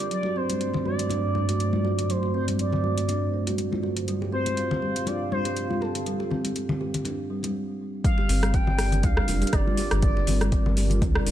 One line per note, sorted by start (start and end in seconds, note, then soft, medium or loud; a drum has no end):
0.00 4.04 D4 medium
0.00 0.11 D5 loud
0.00 4.04 D5 medium
0.11 7.51 G2 medium
0.11 0.24 F#3 medium
0.11 4.04 F#3 medium
0.11 7.51 A3 medium
0.11 7.51 C5 medium
0.11 0.38 D5 loud
0.11 closed hi-hat soft
0.23 0.31 F#4 medium
0.23 muted conga soft
0.36 0.43 C4 medium
0.36 0.85 C5 loud
0.50 closed hi-hat soft
0.50 high conga medium
0.61 closed hi-hat soft
0.74 muted conga soft
0.74 low conga medium
0.85 0.93 F#4 medium
0.85 2.12 D5 loud
0.85 high conga medium
0.99 closed hi-hat soft
1.10 1.18 D4 medium
1.10 closed hi-hat soft
1.10 muted conga soft
1.10 high conga medium
1.35 1.47 D4 medium
1.35 high conga medium
1.49 1.55 F#4 medium
1.49 closed hi-hat soft
1.49 muted conga soft
1.60 closed hi-hat soft
1.73 1.84 F4 medium
1.73 high conga medium
1.85 1.92 F#4 medium
1.85 muted conga soft
1.98 2.04 D3 medium
1.98 closed hi-hat soft
2.10 2.23 F#3 medium
2.10 2.34 C5 loud
2.10 closed hi-hat soft
2.23 2.29 F#4 medium
2.23 muted conga soft
2.34 2.42 C4 medium
2.34 2.46 C5 medium
2.48 closed hi-hat medium
2.48 high conga medium
2.59 3.55 D5 medium
2.59 closed hi-hat soft
2.73 muted conga soft
2.73 low conga medium
2.84 2.91 F#4 medium
2.84 high conga medium
2.98 closed hi-hat soft
3.08 3.16 D4 medium
3.08 closed hi-hat soft
3.08 muted conga soft
3.08 high conga medium
3.34 3.46 D4 medium
3.47 3.53 F#4 medium
3.47 closed hi-hat medium
3.47 muted conga soft
3.47 high conga medium
3.58 closed hi-hat soft
3.72 3.83 F4 medium
3.72 high conga medium
3.83 3.90 F#4 medium
3.83 muted conga soft
3.97 4.03 D3 medium
3.97 closed hi-hat soft
4.08 4.21 G3 medium
4.08 7.52 C4 medium
4.08 7.52 F4 medium
4.08 7.52 F5 medium
4.08 closed hi-hat soft
4.22 4.28 G4 medium
4.22 muted conga soft
4.32 4.40 C4 medium
4.32 5.09 C5 loud
4.46 closed hi-hat medium
4.46 high conga medium
4.57 closed hi-hat soft
4.71 muted conga soft
4.71 low conga medium
4.82 4.90 G4 medium
4.82 high conga medium
4.96 closed hi-hat medium
5.07 5.14 D4 medium
5.07 5.31 D5 loud
5.07 closed hi-hat soft
5.07 muted conga soft
5.07 high conga medium
5.32 5.44 D4 medium
5.32 5.83 C5 loud
5.32 high conga medium
5.45 5.51 G4 medium
5.45 closed hi-hat medium
5.45 muted conga soft
5.57 closed hi-hat soft
5.70 5.81 F4 medium
5.70 high conga medium
5.81 5.89 G4 medium
5.81 6.31 A4 medium
5.81 muted conga soft
5.95 6.01 D3 medium
5.95 closed hi-hat medium
6.06 6.19 G3 medium
6.06 closed hi-hat soft
6.20 6.26 G4 medium
6.20 muted conga soft
6.31 6.38 C4 medium
6.31 low conga medium
6.44 closed hi-hat medium
6.44 high conga medium
6.56 closed hi-hat soft
6.69 muted conga soft
6.69 high conga medium
6.69 low conga loud
6.81 6.88 G4 medium
6.81 high conga medium
6.94 closed hi-hat medium
6.94 low conga medium
7.05 7.13 D4 medium
7.05 closed hi-hat soft
7.05 muted conga soft
7.05 high conga medium
7.30 7.42 G3 medium
7.43 7.54 G3 medium
7.43 closed hi-hat medium
7.43 muted conga soft
7.43 high conga medium
8.04 11.31 G3 medium
8.04 8.18 G3 medium
8.04 11.31 D4 medium
8.04 11.31 F4 medium
8.04 11.31 A#4 medium
8.04 11.31 D5 medium
8.04 8.55 F5 loud
8.04 kick loud
8.04 closed hi-hat medium
8.04 shaker soft
8.18 8.24 G4 medium
8.18 muted conga medium
8.29 8.59 G1 loud
8.29 8.37 C4 loud
8.29 open hi-hat medium
8.29 shaker medium
8.43 cross-stick loud
8.43 closed hi-hat soft
8.43 high conga medium
8.43 shaker medium
8.54 9.05 G5 loud
8.54 kick loud
8.54 closed hi-hat medium
8.54 shaker soft
8.67 9.05 G1 loud
8.67 muted conga soft
8.67 low conga loud
8.78 8.86 G4 medium
8.78 cross-stick medium
8.78 open hi-hat medium
8.78 high conga medium
8.78 shaker medium
8.92 closed hi-hat soft
8.92 low conga medium
8.92 shaker medium
9.03 9.20 D2 medium
9.03 9.11 D4 medium
9.03 9.55 F5 loud
9.03 kick loud
9.03 closed hi-hat medium
9.03 muted conga medium
9.03 high conga medium
9.03 shaker soft
9.17 cross-stick loud
9.28 9.44 F1 loud
9.28 9.41 D4 medium
9.28 open hi-hat medium
9.28 high conga medium
9.28 shaker medium
9.42 9.48 G4 medium
9.42 closed hi-hat soft
9.42 muted conga soft
9.42 shaker medium
9.47 closed hi-hat medium
9.53 9.61 G1 medium
9.53 10.02 D5 loud
9.53 kick loud
9.53 cross-stick medium
9.53 closed hi-hat medium
9.53 shaker soft
9.67 9.77 F4 medium
9.67 high conga medium
9.77 9.85 G4 medium
9.77 open hi-hat medium
9.77 muted conga medium
9.77 shaker medium
9.91 10.21 G1 medium
9.91 9.98 D3 medium
9.91 cross-stick medium
9.91 closed hi-hat soft
9.91 shaker medium
10.02 10.16 G3 medium
10.02 10.73 D5 medium
10.02 kick loud
10.02 closed hi-hat medium
10.02 shaker soft
10.16 10.22 G4 medium
10.16 muted conga medium
10.27 10.57 G1 loud
10.27 10.35 C4 loud
10.27 open hi-hat medium
10.27 low conga medium
10.27 shaker medium
10.41 cross-stick medium
10.41 closed hi-hat soft
10.41 high conga medium
10.41 shaker medium
10.52 kick loud
10.52 closed hi-hat medium
10.52 shaker soft
10.66 11.03 G1 loud
10.66 muted conga soft
10.66 high conga medium
10.66 low conga loud
10.77 10.85 G4 medium
10.77 open hi-hat medium
10.77 high conga medium
10.77 shaker loud
10.90 closed hi-hat soft
10.90 low conga medium
10.90 shaker medium
11.02 11.18 D2 medium
11.02 11.09 D4 medium
11.02 kick loud
11.02 closed hi-hat medium
11.02 mid tom medium
11.02 muted conga medium
11.02 high conga loud
11.02 shaker soft
11.15 cross-stick medium
11.27 11.31 F1 loud
11.27 11.31 D4 medium
11.27 open hi-hat medium
11.27 shaker medium